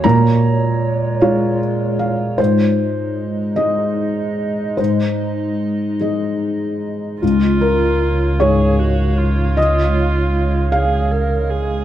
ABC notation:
X:1
M:6/8
L:1/8
Q:3/8=51
K:Db
V:1 name="Felt piano"
b3 f z f | c3 e3 | c3 z3 | z B2 d3 |
e3 f3 |]
V:2 name="Felt piano" clef=bass
B,,3 [A,Fd]3 | A,,3 [A,A]3 | A,,3 [A,Ae]3 | D,,3 A,,3- |
A,,6 |]
V:3 name="Viola"
z6 | z6 | z6 | F3 A G F- |
F3 A B A |]
V:4 name="Ambient pad"
[A,Fd]6 | [A,Ee]6- | [A,Ee]6 | [A,df]6- |
[A,df]6 |]
V:5 name="Double bass" clef=bass
z6 | z6 | z6 | D,,6- |
D,,6 |]